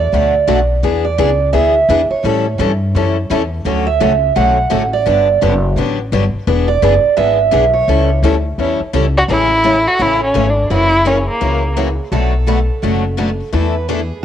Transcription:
Already playing: upright bass E2
0.00 steel-string acoustic guitar D5
0.12 upright bass D2, steel-string acoustic guitar B2 F#3 A3 D4 F#4 B4
0.47 upright bass B1, steel-string acoustic guitar B2 F#3 A3 D4 F#4 B4
0.83 upright bass E2, steel-string acoustic guitar E3 B3 D4 G#4 B4
1.05 steel-string acoustic guitar D5
1.18 upright bass C#2, steel-string acoustic guitar E3 B3 D4 G#4 B4
1.53 upright bass D2, steel-string acoustic guitar E3 B3 D4 G#4 B4 E5
1.88 upright bass E2, steel-string acoustic guitar E3 B3 D4 G#4 B4
2.10 steel-string acoustic guitar C#5, muted upright bass stroke
2.23 upright bass A2, steel-string acoustic guitar E3 G3 C#4 E4 A4
2.58 upright bass G2, steel-string acoustic guitar E3 G3 C#4 E4 A4
2.94 upright bass F#2, steel-string acoustic guitar E3 G3 C#4 E4 A4
3.30 upright bass E2, steel-string acoustic guitar E3 G3 C#4 E4 A4
3.64 upright bass D2, steel-string acoustic guitar D3 F#3 A3 C#4 F#4 A4
3.87 steel-string acoustic guitar E5
4.00 upright bass C#2, steel-string acoustic guitar D3 F#3 A3 C#4 F#4 A4
4.35 upright bass B1, steel-string acoustic guitar D3 F#3 A3 C#4 F#4 A4 F#5
4.70 upright bass A1, steel-string acoustic guitar D3 F#3 A3 C#4 F#4 A4
4.93 steel-string acoustic guitar D5
5.07 upright bass G1, steel-string acoustic guitar D3 F#3 B3 D4 G4
5.41 upright bass F#1, steel-string acoustic guitar D3 F#3 B3 D4 G4
5.76 upright bass A1, steel-string acoustic guitar D3 F#3 B3 D4 G4
6.12 upright bass G1, steel-string acoustic guitar D3 F#3 B3 D4 G4
6.34 muted upright bass stroke
6.47 upright bass E1, steel-string acoustic guitar E3 B3 D4 G#4 B4
6.68 steel-string acoustic guitar D5
6.82 upright bass F#1, steel-string acoustic guitar E3 B3 D4 G#4 B4
7.04 muted upright bass stroke
7.17 upright bass G#1, steel-string acoustic guitar E3 B3 D4 G#4 B4 E5
7.53 upright bass B1, steel-string acoustic guitar E3 B3 D4 G#4 B4
7.74 steel-string acoustic guitar C#5
7.87 upright bass C#2, steel-string acoustic guitar E3 G3 C#4 E4 A4
8.22 upright bass D2, steel-string acoustic guitar E3 G3 C#4 E4 A4
8.58 upright bass E2, steel-string acoustic guitar E3 G3 C#4 E4 A4
8.80 muted upright bass stroke
8.94 upright bass C#2, steel-string acoustic guitar E3 G3 C#4 E4 A4
9.18 violin F#4
9.28 upright bass A1, steel-string acoustic guitar C#3 E3 G#3 A3 C#4 E4 G#4 A4, violin E4
9.64 steel-string acoustic guitar C#3 E3 G#3 A3 C#4 E4 G#4 A4
9.87 violin F#4
9.98 upright bass A1, steel-string acoustic guitar C#3 E3 G#3 A3 C#4 E4 G#4 A4, violin E4
10.24 violin C#4
10.34 upright bass G#1, steel-string acoustic guitar C#3 E3 G#3 A3 C#4 E4 G#4 A4
10.50 violin D4
10.70 upright bass F#1, steel-string acoustic guitar C#3 E3 F#3 A#3 C#4 E4 F#4 G#4 A#4, violin E4
11.05 steel-string acoustic guitar C#3 E3 F#3 A#3 C#4 E4 F#4 A#4, violin C#4
11.29 violin A#3
11.41 upright bass C#2, steel-string acoustic guitar C#3 E3 F#3 A#3 C#4 E4 F#4 A#4
11.77 steel-string acoustic guitar C#3 E3 F#3 A#3 C#4 E4 F#4 A#4
12.12 upright bass B1, steel-string acoustic guitar B2 F#3 A3 D4 F#4 A4 B4
12.46 steel-string acoustic guitar B2 F#3 A3 D4 F#4 B4
12.82 upright bass F#1, steel-string acoustic guitar B2 F#3 A3 D4 F#4 B4
13.17 steel-string acoustic guitar B2 F#3 A3 D4 F#4 B4
13.53 upright bass E2, steel-string acoustic guitar E3 A3 D4 E4 A4 B4
13.88 steel-string acoustic guitar E3 A3 D4 E4 G#4 A4

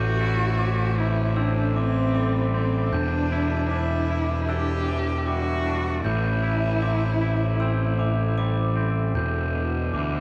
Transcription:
Already playing: picked electric bass A1, clean electric guitar A2 E3 E4, ambient pad E4 A4 C5 E5, cello F#4, glockenspiel G6
0.21 clean electric guitar E4
0.59 clean electric guitar C4, glockenspiel D6
0.98 clean electric guitar E4, cello E4
1.36 clean electric guitar C4, cello D4, glockenspiel E6
1.76 clean electric guitar E3, cello C4, glockenspiel D6
2.15 clean electric guitar G3, glockenspiel D6
2.53 cello C4, clean electric guitar C4
2.92 picked electric bass E1, clean electric guitar E2, cello D4, ambient pad E4 B4 D5, glockenspiel G6
3.32 clean electric guitar E4
3.69 clean electric guitar D4, cello E4, glockenspiel D6
4.10 clean electric guitar E4
4.49 clean electric guitar D4, cello G4, glockenspiel E6
4.87 clean electric guitar E3, glockenspiel D6
5.26 clean electric guitar G3, cello F#4, glockenspiel D6
5.66 clean electric guitar D4
6.04 picked electric bass A1, clean electric guitar A2, cello E4, ambient pad A4 C5, glockenspiel G6
6.43 clean electric guitar E4
6.82 clean electric guitar C4, glockenspiel D6
7.21 clean electric guitar E4
7.60 clean electric guitar C4, glockenspiel E6
7.99 clean electric guitar E3, glockenspiel D6
8.38 clean electric guitar G3, glockenspiel D6
8.76 clean electric guitar C4
9.15 picked electric bass E1, clean electric guitar E2, ambient pad G3 D4 E4 B4 E5, glockenspiel G6
9.55 clean electric guitar B2
9.93 picked electric bass D2, clean electric guitar E3, glockenspiel D6

